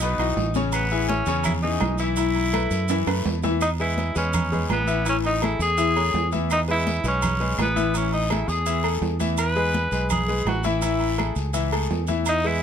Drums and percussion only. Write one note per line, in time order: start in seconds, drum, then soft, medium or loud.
0.00 high conga soft
0.00 low agogo medium
0.00 long guiro medium
0.00 maracas loud
0.18 high conga soft
0.18 low agogo loud
0.18 claves medium
0.18 maracas soft
0.36 high conga soft
0.36 low timbale medium
0.36 short guiro medium
0.36 maracas soft
0.54 high conga medium
0.54 short guiro medium
0.54 maracas medium
0.72 high conga soft
0.72 low agogo loud
0.72 long guiro medium
0.72 claves medium
0.72 maracas loud
0.90 high conga soft
0.90 maracas soft
1.08 high conga loud
1.08 low timbale medium
1.08 low agogo medium
1.08 short guiro medium
1.08 maracas soft
1.26 high conga soft
1.26 short guiro medium
1.26 maracas medium
1.44 high conga soft
1.44 low conga loud
1.44 low agogo loud
1.44 long guiro medium
1.44 claves medium
1.44 maracas medium
1.62 high conga soft
1.62 maracas soft
1.80 high conga medium
1.80 low timbale loud
1.80 low agogo loud
1.80 short guiro medium
1.80 claves medium
1.80 maracas soft
1.98 short guiro medium
1.98 maracas medium
2.16 high conga soft
2.16 low agogo medium
2.16 long guiro medium
2.16 maracas loud
2.35 high conga soft
2.35 low agogo medium
2.35 maracas soft
2.53 high conga loud
2.53 low timbale medium
2.53 low agogo loud
2.53 short guiro medium
2.53 claves medium
2.53 maracas soft
2.71 high conga soft
2.71 short guiro medium
2.71 maracas medium
2.88 high conga soft
2.88 high timbale loud
2.88 low agogo medium
2.88 long guiro medium
2.88 maracas loud
3.07 high conga soft
3.07 high timbale loud
3.07 low agogo loud
3.07 claves medium
3.07 maracas soft
3.25 high conga soft
3.25 low timbale medium
3.25 short guiro medium
3.25 maracas soft
3.43 high conga medium
3.43 low timbale medium
3.43 short guiro medium
3.43 maracas medium
3.61 high conga soft
3.61 low agogo loud
3.61 long guiro medium
3.61 claves medium
3.61 maracas medium
3.79 high conga soft
3.79 maracas soft
3.97 high conga medium
3.97 low timbale medium
3.97 low agogo medium
3.97 short guiro medium
3.97 maracas soft
4.16 high conga soft
4.16 short guiro medium
4.16 maracas medium
4.33 high conga soft
4.33 low conga loud
4.33 low agogo loud
4.33 long guiro medium
4.33 claves medium
4.33 maracas medium
4.52 high conga soft
4.52 low conga medium
4.52 maracas soft
4.70 high conga medium
4.70 low timbale medium
4.70 low agogo loud
4.70 short guiro medium
4.70 claves medium
4.70 maracas soft
4.87 short guiro medium
4.87 maracas medium
5.06 high conga soft
5.06 low agogo medium
5.06 long guiro medium
5.06 maracas loud
5.24 high conga soft
5.24 low agogo medium
5.24 maracas soft
5.42 high conga loud
5.42 low timbale medium
5.42 low agogo loud
5.42 short guiro medium
5.42 claves medium
5.42 maracas soft
5.60 high conga soft
5.60 short guiro medium
5.60 maracas medium
5.78 high conga soft
5.78 low agogo medium
5.78 long guiro medium
5.78 maracas medium
5.96 high conga soft
5.96 low agogo loud
5.96 claves medium
5.96 maracas soft
6.14 high conga soft
6.14 low timbale medium
6.14 short guiro medium
6.14 maracas soft
6.32 high conga medium
6.32 short guiro medium
6.32 maracas medium
6.50 high conga soft
6.50 low agogo loud
6.50 long guiro medium
6.50 claves medium
6.50 maracas medium
6.68 high conga soft
6.68 maracas soft
6.86 high conga loud
6.86 low timbale medium
6.86 low agogo medium
6.86 short guiro medium
6.86 maracas soft
7.04 high conga soft
7.04 short guiro medium
7.04 maracas medium
7.22 high conga soft
7.22 low conga medium
7.22 low agogo loud
7.22 long guiro medium
7.22 claves medium
7.22 maracas loud
7.40 high conga soft
7.40 maracas soft
7.58 high conga medium
7.58 low timbale loud
7.58 low agogo loud
7.58 short guiro medium
7.58 claves medium
7.58 maracas soft
7.77 high conga medium
7.77 short guiro medium
7.77 maracas medium
7.94 high conga soft
7.94 low agogo medium
7.94 long guiro medium
7.94 maracas loud
8.12 high conga soft
8.12 low agogo medium
8.12 maracas soft
8.30 high conga loud
8.30 low timbale medium
8.30 low agogo loud
8.30 short guiro medium
8.30 claves medium
8.30 maracas soft
8.49 high conga soft
8.49 short guiro medium
8.49 maracas medium
8.66 high conga soft
8.66 low agogo medium
8.66 long guiro medium
8.66 maracas loud
8.84 high conga soft
8.84 low agogo loud
8.84 claves medium
8.84 maracas soft
9.02 high conga soft
9.02 low timbale medium
9.02 short guiro medium
9.02 maracas soft
9.20 high conga medium
9.20 short guiro medium
9.20 maracas medium
9.37 high conga soft
9.37 low agogo loud
9.37 long guiro medium
9.37 claves medium
9.37 maracas medium
9.56 high conga soft
9.56 maracas soft
9.74 high conga loud
9.74 low timbale medium
9.74 low agogo medium
9.74 short guiro medium
9.74 maracas soft
9.92 high conga soft
9.92 short guiro medium
9.92 maracas medium
10.10 high conga soft
10.10 low conga loud
10.10 low agogo loud
10.10 long guiro medium
10.10 claves medium
10.10 maracas medium
10.28 high conga soft
10.28 maracas soft
10.46 high conga medium
10.46 low timbale medium
10.46 low agogo loud
10.46 short guiro medium
10.46 claves medium
10.46 maracas soft
10.64 high conga medium
10.64 short guiro medium
10.64 maracas medium
10.82 high conga soft
10.82 low agogo medium
10.82 long guiro medium
10.82 maracas loud
11.00 high conga soft
11.00 low agogo medium
11.00 maracas soft
11.17 high conga loud
11.17 low timbale medium
11.17 low agogo loud
11.17 short guiro medium
11.17 claves medium
11.17 maracas soft
11.36 high conga soft
11.36 short guiro medium
11.36 maracas medium
11.54 high conga soft
11.54 low agogo medium
11.54 long guiro medium
11.54 maracas loud
11.72 high conga soft
11.72 low agogo loud
11.72 claves medium
11.72 maracas soft
11.90 high conga soft
11.90 low timbale medium
11.90 short guiro medium
11.90 maracas soft
12.07 high conga medium
12.07 short guiro medium
12.07 maracas medium
12.26 high conga soft
12.26 low agogo loud
12.26 long guiro medium
12.26 claves medium
12.26 maracas loud
12.44 high conga soft
12.44 maracas soft